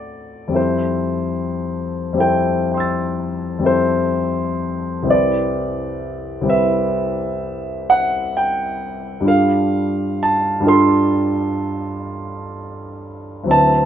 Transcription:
Already playing: A2 A3 C4 F#4 A4 D5
0.48 F2 G3 C4
0.53 E4 A4 C5
2.13 F2 G3 C4
2.18 E4 A4 G5
2.72 G5 C6
2.77 E6 A6
3.59 F2 G3 C4
3.64 E4 A4 C5
5.03 C2 G3 C4
5.08 E4 B4 D5
6.41 C2 G3 C4
6.47 E4 B4 E5
7.90 F#5
8.37 G5
9.20 G2 G3 D4
9.26 F4 A4 F5
10.23 A5
10.60 G2 G3 D4
10.66 F4 A4 C6
13.44 D2 F#3 C4
13.49 E4 B4 A5

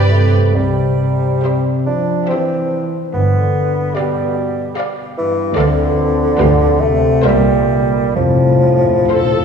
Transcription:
Already playing: G1 G2 G3 G4 B4 D5
0.10 C3 A3
0.56 C2 C3 G3
1.44 G4 C5 E5
1.86 F3 D4
2.29 E3 C4 G4 C5 E5
3.14 G1 G2 D3 B3
3.95 B2 G3 G4 D5 F5
4.77 G4 D5 F5
5.18 G2 E3
5.56 D2 F2 D3 A4 D5 F5
6.38 D2 G4 B4 F5
6.81 C3 A3
7.23 C2 A#2 G3 A#4 C5 E5
8.16 F1 F2 A2 F3
8.26 F2
8.34 F2
8.42 F2
8.51 F2
8.60 F2
8.69 F2
8.77 F2
8.85 F2
8.93 F2
9.01 F2
9.08 F2 A4 C5 F5
9.16 F2
9.25 F2
9.33 F2
9.41 F2

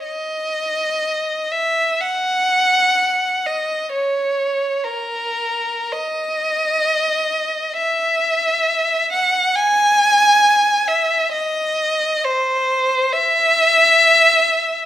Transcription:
0.06 D#5
1.52 E5
2.01 F#5
3.46 D#5
3.93 C#5
4.84 A#4
5.92 D#5
7.77 E5
9.13 F#5
9.56 G#5
10.88 E5
11.32 D#5
12.25 C5
13.13 E5

